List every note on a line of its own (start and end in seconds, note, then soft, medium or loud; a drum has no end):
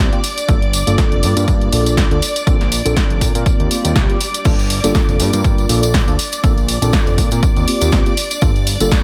0.00 0.11 C2 loud
0.00 4.44 D5 medium
0.00 4.44 D6 medium
0.12 0.19 A#3 medium
0.12 0.19 C4 medium
0.12 0.19 F4 medium
0.12 0.19 G4 medium
0.12 closed hi-hat soft
0.24 open hi-hat medium
0.24 tambourine medium
0.38 closed hi-hat medium
0.38 tambourine soft
0.48 0.84 G1 loud
0.48 0.56 A#3 loud
0.48 0.56 D4 medium
0.48 0.57 F4 medium
0.48 0.57 A4 loud
0.48 kick loud
0.48 closed hi-hat soft
0.48 tambourine soft
0.62 closed hi-hat soft
0.73 open hi-hat loud
0.73 tambourine medium
0.87 0.96 G1 medium
0.87 1.33 A#3 medium
0.87 1.33 D4 medium
0.87 1.33 F4 medium
0.87 1.34 A4 loud
0.87 closed hi-hat medium
0.87 tambourine soft
0.98 kick loud
0.98 snare loud
0.98 closed hi-hat medium
0.98 tambourine soft
1.12 1.24 F1 medium
1.12 closed hi-hat soft
1.23 1.34 G2 loud
1.23 open hi-hat medium
1.23 tambourine medium
1.36 1.46 G2 medium
1.36 1.70 A#3 medium
1.36 1.70 D4 medium
1.36 1.70 F4 medium
1.36 1.70 A#4 loud
1.36 closed hi-hat medium
1.36 tambourine soft
1.48 1.69 G2 loud
1.48 kick loud
1.48 closed hi-hat medium
1.48 tambourine soft
1.61 closed hi-hat soft
1.72 2.08 A#1 medium
1.72 2.08 A#3 medium
1.72 2.08 D4 medium
1.72 2.08 F4 medium
1.72 2.08 A4 medium
1.72 open hi-hat loud
1.72 tambourine medium
1.86 closed hi-hat medium
1.86 tambourine soft
1.97 kick loud
1.97 snare loud
1.97 closed hi-hat medium
1.97 tambourine soft
2.11 2.20 D2 medium
2.11 2.17 A#3 medium
2.11 2.17 D4 medium
2.11 2.18 F4 medium
2.11 2.18 A4 medium
2.11 closed hi-hat soft
2.22 open hi-hat medium
2.22 tambourine medium
2.36 closed hi-hat medium
2.36 tambourine soft
2.46 2.82 A#1 loud
2.46 2.55 C4 loud
2.46 2.55 D4 medium
2.46 2.55 F4 medium
2.46 2.55 A4 loud
2.46 kick loud
2.46 closed hi-hat medium
2.46 tambourine soft
2.61 snare soft
2.61 closed hi-hat soft
2.72 open hi-hat loud
2.72 tambourine medium
2.85 2.95 A#1 medium
2.85 3.32 C4 medium
2.85 3.32 D4 medium
2.85 3.32 F4 medium
2.85 3.32 A4 loud
2.85 closed hi-hat medium
2.85 tambourine soft
2.97 kick loud
2.97 snare loud
2.97 closed hi-hat medium
2.97 tambourine soft
3.10 3.23 F1 medium
3.10 closed hi-hat soft
3.21 3.33 A#2 loud
3.21 kick medium
3.21 open hi-hat medium
3.21 tambourine medium
3.35 3.44 A#2 medium
3.35 3.68 A#3 medium
3.35 3.68 C4 medium
3.35 3.68 F4 medium
3.35 3.68 A#4 medium
3.35 closed hi-hat medium
3.35 tambourine soft
3.46 kick loud
3.46 closed hi-hat medium
3.46 tambourine soft
3.46 swell medium
3.60 3.69 D#2 medium
3.60 closed hi-hat soft
3.71 4.06 A#3 medium
3.71 4.06 C4 medium
3.71 4.06 F4 medium
3.71 4.06 G4 medium
3.71 open hi-hat loud
3.71 tambourine medium
3.85 3.94 D#2 medium
3.85 closed hi-hat medium
3.85 tambourine soft
3.96 4.07 C2 loud
3.96 kick loud
3.96 snare loud
3.96 closed hi-hat medium
3.96 tambourine soft
4.09 4.16 A#3 medium
4.09 4.16 C4 medium
4.09 4.16 F4 medium
4.09 4.16 G4 medium
4.09 closed hi-hat soft
4.21 open hi-hat medium
4.21 tambourine medium
4.34 closed hi-hat medium
4.34 tambourine soft
4.45 4.80 G1 loud
4.45 4.53 A#3 loud
4.45 4.53 D4 medium
4.45 4.53 F4 medium
4.45 4.53 A4 loud
4.45 9.03 D5 medium
4.45 9.03 D6 medium
4.45 kick loud
4.45 closed hi-hat soft
4.45 crash medium
4.45 tambourine medium
4.45 tambourine soft
4.59 closed hi-hat soft
4.59 tambourine soft
4.70 open hi-hat loud
4.70 tambourine medium
4.83 4.93 G1 medium
4.83 5.30 A#3 loud
4.83 5.30 D4 medium
4.83 5.30 F4 medium
4.83 5.30 A4 loud
4.83 closed hi-hat medium
4.83 tambourine soft
4.83 tambourine medium
4.95 kick loud
4.95 snare loud
4.95 closed hi-hat medium
4.95 tambourine medium
4.95 tambourine soft
5.09 5.21 F1 medium
5.09 closed hi-hat soft
5.09 tambourine soft
5.20 5.31 G2 loud
5.20 open hi-hat medium
5.20 tambourine medium
5.33 5.43 G2 medium
5.33 5.66 A#3 medium
5.33 5.66 D4 medium
5.33 5.67 F4 medium
5.33 5.67 A#4 loud
5.33 closed hi-hat medium
5.33 tambourine medium
5.33 tambourine soft
5.44 5.66 G2 medium
5.44 kick loud
5.44 closed hi-hat medium
5.44 tambourine medium
5.44 tambourine soft
5.58 closed hi-hat soft
5.58 tambourine soft
5.69 6.04 A#1 medium
5.69 6.04 A#3 medium
5.69 6.04 D4 medium
5.69 6.05 F4 medium
5.69 6.05 A4 medium
5.69 open hi-hat loud
5.69 tambourine medium
5.83 closed hi-hat medium
5.83 tambourine medium
5.83 tambourine soft
5.94 kick loud
5.94 snare loud
5.94 closed hi-hat medium
5.94 tambourine medium
5.94 tambourine soft
6.07 6.17 D2 medium
6.07 6.14 A#3 medium
6.07 6.14 D4 medium
6.07 6.14 F4 medium
6.07 6.14 A4 loud
6.07 closed hi-hat soft
6.07 tambourine soft
6.19 open hi-hat medium
6.19 tambourine medium
6.32 closed hi-hat medium
6.32 tambourine medium
6.32 tambourine soft
6.43 6.79 A#1 loud
6.43 6.51 C4 loud
6.43 6.52 D4 medium
6.43 6.52 F4 medium
6.43 6.52 A4 loud
6.43 kick loud
6.43 closed hi-hat soft
6.43 tambourine medium
6.43 tambourine soft
6.58 closed hi-hat soft
6.58 tambourine soft
6.68 open hi-hat loud
6.68 tambourine medium
6.82 6.91 A#1 medium
6.82 7.28 C4 medium
6.82 7.28 D4 medium
6.82 7.28 F4 medium
6.82 7.29 A4 loud
6.82 closed hi-hat medium
6.82 tambourine medium
6.82 tambourine soft
6.82 high conga medium
6.93 kick loud
6.93 snare loud
6.93 closed hi-hat medium
6.93 tambourine medium
6.93 tambourine soft
7.06 7.19 F1 medium
7.06 closed hi-hat soft
7.06 tambourine soft
7.18 7.30 A#2 loud
7.18 kick medium
7.18 open hi-hat medium
7.18 tambourine medium
7.31 7.41 A#2 medium
7.31 7.65 A#3 medium
7.31 7.65 C4 medium
7.31 7.65 F4 medium
7.31 7.65 A#4 medium
7.31 closed hi-hat medium
7.31 tambourine medium
7.31 tambourine soft
7.43 kick loud
7.43 closed hi-hat medium
7.43 tambourine soft
7.43 tambourine medium
7.56 7.66 D#2 medium
7.56 closed hi-hat soft
7.56 tambourine soft
7.67 8.03 A#3 medium
7.67 8.03 C4 medium
7.67 8.03 F4 medium
7.67 8.03 G4 medium
7.67 open hi-hat loud
7.67 tambourine medium
7.81 7.91 D#2 medium
7.81 closed hi-hat medium
7.81 tambourine medium
7.81 tambourine soft
7.92 8.04 C2 medium
7.92 kick loud
7.92 snare loud
7.92 closed hi-hat medium
7.92 tambourine medium
7.92 tambourine soft
8.06 8.12 A#3 medium
8.06 8.12 C4 medium
8.06 8.13 F4 medium
8.06 8.13 G4 medium
8.06 closed hi-hat soft
8.06 tambourine soft
8.17 open hi-hat medium
8.17 tambourine medium
8.31 closed hi-hat medium
8.31 tambourine medium
8.31 tambourine soft
8.41 8.77 G1 medium
8.41 8.50 A#3 loud
8.41 8.50 D4 medium
8.41 8.50 F4 medium
8.41 8.50 A4 loud
8.41 kick loud
8.41 closed hi-hat soft
8.41 tambourine medium
8.41 tambourine soft
8.55 closed hi-hat soft
8.55 tambourine soft
8.67 open hi-hat loud
8.67 tambourine medium
8.80 8.90 G1 medium
8.80 9.03 A#3 medium
8.80 9.03 D4 medium
8.80 9.03 F4 medium
8.80 9.03 A4 loud
8.80 closed hi-hat soft
8.80 tambourine medium
8.80 tambourine soft
8.91 kick loud
8.91 snare loud
8.91 closed hi-hat medium
8.91 tambourine medium
8.91 tambourine soft